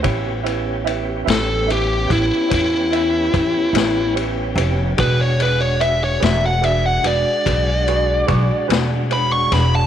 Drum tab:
RD |xxxxxxxxxxxx|xxxxxxxxxxxx|
SD |---o-----o--|---o-----o-o|
BD |o----oo-o---|o-----o-o---|